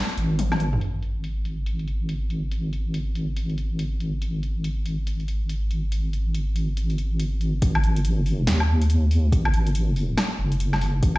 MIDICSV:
0, 0, Header, 1, 3, 480
1, 0, Start_track
1, 0, Tempo, 425532
1, 917, Time_signature, 4, 2, 24, 8
1, 12614, End_track
2, 0, Start_track
2, 0, Title_t, "Wobble bass"
2, 0, Program_c, 0, 39
2, 197, Note_on_c, 0, 32, 100
2, 902, Note_off_c, 0, 32, 0
2, 917, Note_on_c, 0, 32, 82
2, 8578, Note_off_c, 0, 32, 0
2, 8597, Note_on_c, 0, 32, 94
2, 9262, Note_off_c, 0, 32, 0
2, 9262, Note_on_c, 0, 31, 94
2, 9542, Note_off_c, 0, 31, 0
2, 9558, Note_on_c, 0, 39, 94
2, 10502, Note_off_c, 0, 39, 0
2, 10517, Note_on_c, 0, 32, 98
2, 11462, Note_off_c, 0, 32, 0
2, 11719, Note_on_c, 0, 30, 102
2, 12423, Note_off_c, 0, 30, 0
2, 12438, Note_on_c, 0, 32, 98
2, 12614, Note_off_c, 0, 32, 0
2, 12614, End_track
3, 0, Start_track
3, 0, Title_t, "Drums"
3, 104, Note_on_c, 9, 42, 35
3, 198, Note_off_c, 9, 42, 0
3, 198, Note_on_c, 9, 42, 53
3, 311, Note_off_c, 9, 42, 0
3, 438, Note_on_c, 9, 42, 80
3, 438, Note_on_c, 9, 48, 60
3, 551, Note_off_c, 9, 42, 0
3, 551, Note_off_c, 9, 48, 0
3, 584, Note_on_c, 9, 38, 34
3, 584, Note_on_c, 9, 48, 60
3, 584, Note_on_c, 9, 77, 55
3, 677, Note_on_c, 9, 42, 53
3, 697, Note_off_c, 9, 38, 0
3, 697, Note_off_c, 9, 48, 0
3, 697, Note_off_c, 9, 77, 0
3, 790, Note_off_c, 9, 42, 0
3, 824, Note_on_c, 9, 45, 84
3, 917, Note_on_c, 9, 42, 73
3, 937, Note_off_c, 9, 45, 0
3, 1030, Note_off_c, 9, 42, 0
3, 1157, Note_on_c, 9, 42, 50
3, 1270, Note_off_c, 9, 42, 0
3, 1397, Note_on_c, 9, 42, 74
3, 1510, Note_off_c, 9, 42, 0
3, 1637, Note_on_c, 9, 42, 58
3, 1750, Note_off_c, 9, 42, 0
3, 1876, Note_on_c, 9, 42, 76
3, 1989, Note_off_c, 9, 42, 0
3, 2023, Note_on_c, 9, 42, 31
3, 2116, Note_off_c, 9, 42, 0
3, 2116, Note_on_c, 9, 42, 50
3, 2229, Note_off_c, 9, 42, 0
3, 2357, Note_on_c, 9, 42, 73
3, 2469, Note_off_c, 9, 42, 0
3, 2596, Note_on_c, 9, 42, 49
3, 2709, Note_off_c, 9, 42, 0
3, 2837, Note_on_c, 9, 42, 76
3, 2950, Note_off_c, 9, 42, 0
3, 3077, Note_on_c, 9, 42, 50
3, 3190, Note_off_c, 9, 42, 0
3, 3317, Note_on_c, 9, 42, 76
3, 3430, Note_off_c, 9, 42, 0
3, 3558, Note_on_c, 9, 42, 57
3, 3670, Note_off_c, 9, 42, 0
3, 3796, Note_on_c, 9, 42, 75
3, 3909, Note_off_c, 9, 42, 0
3, 3942, Note_on_c, 9, 42, 32
3, 4036, Note_off_c, 9, 42, 0
3, 4036, Note_on_c, 9, 42, 52
3, 4149, Note_off_c, 9, 42, 0
3, 4276, Note_on_c, 9, 42, 72
3, 4389, Note_off_c, 9, 42, 0
3, 4517, Note_on_c, 9, 42, 52
3, 4629, Note_off_c, 9, 42, 0
3, 4757, Note_on_c, 9, 42, 71
3, 4870, Note_off_c, 9, 42, 0
3, 4997, Note_on_c, 9, 42, 50
3, 5110, Note_off_c, 9, 42, 0
3, 5237, Note_on_c, 9, 42, 75
3, 5350, Note_off_c, 9, 42, 0
3, 5477, Note_on_c, 9, 42, 55
3, 5590, Note_off_c, 9, 42, 0
3, 5718, Note_on_c, 9, 42, 75
3, 5831, Note_off_c, 9, 42, 0
3, 5863, Note_on_c, 9, 42, 32
3, 5957, Note_off_c, 9, 42, 0
3, 5957, Note_on_c, 9, 42, 50
3, 6070, Note_off_c, 9, 42, 0
3, 6198, Note_on_c, 9, 42, 75
3, 6310, Note_off_c, 9, 42, 0
3, 6437, Note_on_c, 9, 42, 49
3, 6550, Note_off_c, 9, 42, 0
3, 6677, Note_on_c, 9, 42, 69
3, 6790, Note_off_c, 9, 42, 0
3, 6917, Note_on_c, 9, 42, 49
3, 7030, Note_off_c, 9, 42, 0
3, 7157, Note_on_c, 9, 42, 70
3, 7270, Note_off_c, 9, 42, 0
3, 7396, Note_on_c, 9, 42, 56
3, 7509, Note_off_c, 9, 42, 0
3, 7637, Note_on_c, 9, 42, 75
3, 7749, Note_off_c, 9, 42, 0
3, 7782, Note_on_c, 9, 42, 33
3, 7876, Note_off_c, 9, 42, 0
3, 7876, Note_on_c, 9, 42, 47
3, 7989, Note_off_c, 9, 42, 0
3, 8117, Note_on_c, 9, 42, 71
3, 8229, Note_off_c, 9, 42, 0
3, 8356, Note_on_c, 9, 42, 49
3, 8469, Note_off_c, 9, 42, 0
3, 8596, Note_on_c, 9, 42, 81
3, 8597, Note_on_c, 9, 36, 115
3, 8709, Note_off_c, 9, 42, 0
3, 8710, Note_off_c, 9, 36, 0
3, 8744, Note_on_c, 9, 77, 78
3, 8839, Note_on_c, 9, 42, 55
3, 8856, Note_off_c, 9, 77, 0
3, 8951, Note_off_c, 9, 42, 0
3, 8984, Note_on_c, 9, 42, 54
3, 9077, Note_off_c, 9, 42, 0
3, 9077, Note_on_c, 9, 42, 84
3, 9190, Note_off_c, 9, 42, 0
3, 9316, Note_on_c, 9, 46, 63
3, 9429, Note_off_c, 9, 46, 0
3, 9557, Note_on_c, 9, 38, 117
3, 9557, Note_on_c, 9, 42, 85
3, 9670, Note_off_c, 9, 38, 0
3, 9670, Note_off_c, 9, 42, 0
3, 9704, Note_on_c, 9, 77, 59
3, 9816, Note_off_c, 9, 77, 0
3, 9944, Note_on_c, 9, 42, 58
3, 10037, Note_off_c, 9, 42, 0
3, 10037, Note_on_c, 9, 42, 83
3, 10150, Note_off_c, 9, 42, 0
3, 10276, Note_on_c, 9, 46, 99
3, 10389, Note_off_c, 9, 46, 0
3, 10517, Note_on_c, 9, 36, 123
3, 10518, Note_on_c, 9, 42, 82
3, 10630, Note_off_c, 9, 36, 0
3, 10631, Note_off_c, 9, 42, 0
3, 10663, Note_on_c, 9, 77, 75
3, 10757, Note_on_c, 9, 42, 55
3, 10776, Note_off_c, 9, 77, 0
3, 10870, Note_off_c, 9, 42, 0
3, 10903, Note_on_c, 9, 42, 55
3, 10998, Note_off_c, 9, 42, 0
3, 10998, Note_on_c, 9, 42, 83
3, 11110, Note_off_c, 9, 42, 0
3, 11237, Note_on_c, 9, 46, 60
3, 11350, Note_off_c, 9, 46, 0
3, 11478, Note_on_c, 9, 38, 127
3, 11478, Note_on_c, 9, 42, 85
3, 11478, Note_on_c, 9, 77, 61
3, 11591, Note_off_c, 9, 38, 0
3, 11591, Note_off_c, 9, 42, 0
3, 11591, Note_off_c, 9, 77, 0
3, 11864, Note_on_c, 9, 42, 59
3, 11958, Note_off_c, 9, 42, 0
3, 11958, Note_on_c, 9, 42, 82
3, 12071, Note_off_c, 9, 42, 0
3, 12105, Note_on_c, 9, 38, 38
3, 12105, Note_on_c, 9, 77, 49
3, 12198, Note_on_c, 9, 46, 95
3, 12217, Note_off_c, 9, 38, 0
3, 12217, Note_off_c, 9, 77, 0
3, 12311, Note_off_c, 9, 46, 0
3, 12438, Note_on_c, 9, 36, 123
3, 12438, Note_on_c, 9, 42, 80
3, 12550, Note_off_c, 9, 36, 0
3, 12551, Note_off_c, 9, 42, 0
3, 12614, End_track
0, 0, End_of_file